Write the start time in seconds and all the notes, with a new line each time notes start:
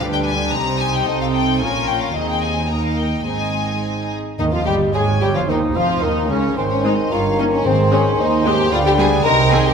0.00 D2 D3 G3 D4 G4 B4 F5
0.14 G5
0.26 G#5
0.53 C2 C3 G3 D#4 G4 C5 A#5
0.81 G#5
0.94 G5
1.07 C2 C3 C4 A4 D#5
1.22 F5
1.34 G5
1.61 A#1 A#2 C#4 F4 A#4 C#5 G#5
1.88 G5
2.02 F5
2.16 D#2 C4 D#4 G#4 D#5
2.31 G5
2.43 G#5
2.71 A#3 D#4 A#4 D#5 A#5
2.86 F5
2.99 G5
3.27 G#1 G#2 C4 D#4 G#4 D#5 G#5
4.38 D#2 G#2 D#3 D#4 D#5
4.52 F2 F3 F4 F5
4.66 G1 G2 G3 G4 G5
4.93 G#1 G#2 G#3 G#4 C#5 G#5
5.20 G1 G2 G3 G4 G5
5.34 F2 F3 F4 F5
5.47 D#2 D#3 D#4 C5 D#5
5.75 F1 F2 F3 F4 F5
6.02 D#2 D#3 D#4 A#4 D#5
6.28 C#2 C#3 C#4 C#5
6.56 G#1 G#2 D#3 C4 C5 G#5
6.70 C#4 C#5
6.84 G#3 C4 D#4 D#5
7.11 G1 G2 F4 A#4 C#5 F5 A#5
7.39 A#3 C#4 D#4 D#5
7.52 C#4 C#5
7.65 G#1 G#2 C4 G#4 C5 G#5
7.91 G#3 C4 C#4 C#5
8.17 D#2 D#4 C5 D#5
8.43 G#3 C4 G4 G5
8.71 D2 D3 F4 B4 D5 F5 G5
8.84 G4 G5
8.98 G3 B3 G#4 G#5
9.24 C2 C3 D#3 A#4 C5 D#5 G5 A#5
9.52 D#3 C4 G#4 G#5
9.65 G4 G5